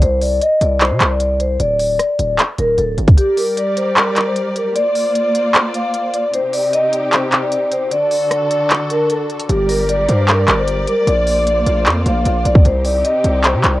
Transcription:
0.02 808-style bass C2, vibraphone C5, closed hi-hat
0.22 vibraphone D5, open hi-hat
0.41 vibraphone D#5, closed hi-hat
0.61 808-style bass C2, vibraphone D5, closed hi-hat
0.81 vibraphone C5, clap, closed hi-hat
0.91 808-style bass C3
1.01 808-style bass C2, clap, closed hi-hat
1.11 vibraphone D5
1.20 closed hi-hat
1.40 vibraphone C5, closed hi-hat
1.60 808-style bass D1, vibraphone D5, closed hi-hat
1.79 open hi-hat
1.99 cross-stick, closed hi-hat
2.19 808-style bass D1, closed hi-hat
2.39 clap, closed hi-hat
2.58 808-style bass D1, vibraphone A#4, closed hi-hat
2.78 808-style bass D1, vibraphone A4, closed hi-hat
2.98 808-style bass G1, closed hi-hat
3.08 kick, closed hi-hat
3.18 string section G3 G4 A#4 D5, vibraphone G4, closed hi-hat
3.37 vibraphone A#4, open hi-hat
3.57 vibraphone D5, closed hi-hat
3.77 vibraphone C5, closed hi-hat
3.97 vibraphone A#4, clap, closed hi-hat
4.16 clap, closed hi-hat
4.27 vibraphone C5
4.36 closed hi-hat
4.56 vibraphone A#4, closed hi-hat
4.76 string section A#3 F4 C5 D5, vibraphone D5, closed hi-hat
4.95 open hi-hat
5.15 closed hi-hat
5.35 closed hi-hat
5.55 clap, closed hi-hat
5.74 vibraphone F5, closed hi-hat
5.94 closed hi-hat
6.14 vibraphone D5, closed hi-hat
6.34 string section C3 C4 D#4 G4, vibraphone C5, closed hi-hat
6.53 vibraphone D5, open hi-hat
6.73 vibraphone D#5, closed hi-hat
6.93 vibraphone D5, closed hi-hat
7.12 vibraphone C5, clap, closed hi-hat
7.32 clap, closed hi-hat
7.42 vibraphone D5
7.52 closed hi-hat
7.72 vibraphone C5, closed hi-hat
7.91 string section D3 D4 F#4 A4, vibraphone D5, closed hi-hat
8.11 open hi-hat
8.31 cross-stick, closed hi-hat
8.51 closed hi-hat
8.70 clap, closed hi-hat
8.90 vibraphone A#4, closed hi-hat
9.10 vibraphone A4, closed hi-hat
9.30 closed hi-hat
9.39 closed hi-hat
9.49 808-style bass G1, string section G3 G4 A#4 D5, vibraphone G4, closed hi-hat
9.69 vibraphone A#4, open hi-hat
9.89 vibraphone D5, closed hi-hat
10.08 808-style bass G2, vibraphone C5, closed hi-hat
10.28 vibraphone A#4, clap, closed hi-hat
10.48 808-style bass G1, clap, closed hi-hat
10.58 vibraphone C5
10.68 closed hi-hat
10.87 vibraphone A#4, closed hi-hat
11.07 808-style bass A#1, string section A#3 F4 C5, vibraphone D5, closed hi-hat
11.27 open hi-hat
11.47 closed hi-hat
11.66 808-style bass A#1, closed hi-hat
11.86 808-style bass F2, clap, closed hi-hat
12.06 808-style bass A#1, vibraphone F5, closed hi-hat
12.25 808-style bass A#1, closed hi-hat
12.45 808-style bass A#1, vibraphone D5, closed hi-hat
12.55 kick
12.65 808-style bass C2, string section C3 C4 D#4 G4, vibraphone C5, closed hi-hat
12.85 vibraphone D5, open hi-hat
13.04 vibraphone D#5, closed hi-hat
13.24 808-style bass C2, vibraphone D5, closed hi-hat
13.44 vibraphone C5, clap, closed hi-hat
13.54 808-style bass C3
13.64 808-style bass C2, clap, closed hi-hat
13.74 vibraphone D5

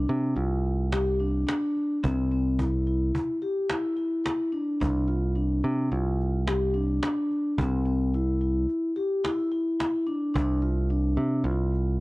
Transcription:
Already playing: vibraphone D4
0.09 picked electric bass C3, cajon slap
0.36 picked electric bass C2, vibraphone F4, cajon slap
0.65 cajon slap
0.92 vibraphone G4, cajon slap
1.20 vibraphone D4, cajon slap
1.47 vibraphone D4, cajon slap
1.76 cajon slap
2.03 picked electric bass C2, vibraphone C4, cajon bass
2.32 vibraphone C4, cajon slap
2.59 vibraphone E4, cajon bass
2.87 vibraphone E4, cajon slap
3.14 cajon bass, cajon slap
3.42 vibraphone G4, cajon slap
3.70 vibraphone E4, cajon slap
3.97 vibraphone E4, cajon slap
4.24 vibraphone E4, cajon slap
4.52 vibraphone D4, cajon slap
4.80 picked electric bass C2, vibraphone D4, cajon bass
5.08 vibraphone F4, cajon slap
5.35 vibraphone D4, cajon slap
5.64 picked electric bass C3, cajon slap
5.92 picked electric bass C2, vibraphone F4, cajon slap
6.20 cajon slap
6.47 vibraphone G4, cajon slap
6.74 vibraphone D4, cajon slap
7.03 vibraphone D4, cajon slap
7.31 cajon slap
7.58 picked electric bass C2, vibraphone C4, cajon bass
7.86 vibraphone C4, cajon slap
8.14 vibraphone E4, cajon slap
8.41 vibraphone E4, cajon slap
8.69 cajon slap
8.96 vibraphone G4, cajon slap
9.24 vibraphone E4, cajon slap
9.52 vibraphone E4, cajon slap
9.80 vibraphone E4, cajon slap
10.07 vibraphone D4, cajon slap
10.34 picked electric bass C2, vibraphone D4, cajon bass
10.62 vibraphone F4, cajon slap
10.90 vibraphone D4, cajon slap
11.17 picked electric bass C3, cajon slap
11.44 picked electric bass C2, vibraphone F4, cajon slap
11.74 cajon slap

